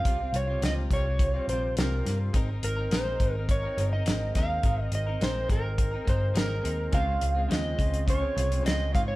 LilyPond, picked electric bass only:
\new Staff \with { instrumentName = "Picked electric bass" } { \clef bass \time 4/4 \key aes \major \tempo 4 = 105 c,8 c,8 des,8 c,4 bes,,8 c,8 g,8 | aes,,8 aes,,8 bes,,8 aes,,4 g,,8 aes,,8 ees,8 | aes,,8 aes,,8 bes,,8 aes,,4 g,,8 aes,,8 ees,8 | des,8 des,8 ees,8 des,4 c,8 des,8 aes,8 | }